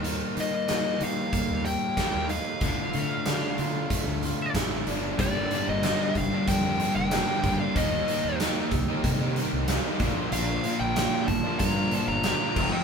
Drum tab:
CC |--------|--------|--------|--------|
HH |xxxxxxxx|xxxxxxxx|xxxxxxxx|xxxxxxxx|
TB |--x---x-|--x---x-|--x---x-|--x---x-|
SD |--o---o-|--o---o-|--o---o-|--o---o-|
BD |----o-o-|o---o-o-|o--oo--o|o--oo--o|

CC |-------x|
HH |xxxxxxx-|
TB |--x---x-|
SD |--o---o-|
BD |---oo--o|